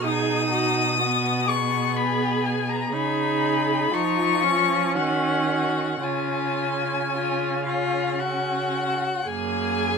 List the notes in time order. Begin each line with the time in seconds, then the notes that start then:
0.02 B2 D#4 G#4 D#6
0.51 F#4
1.00 B3 F#4
1.47 G#4 C#6
1.96 B5
2.46 G#5
2.69 A#5
2.92 C#3 D#4 G#4 B5
3.92 F3 D#4 F4 C#6
4.44 C#4
4.95 D#3 F#4 F#5
5.48 F#4
6.02 C#3 C#4 F4 G#5
7.12 F4
7.65 F4 F5
8.20 F#4 F#5
9.26 F#2 A#3 G#4 G#5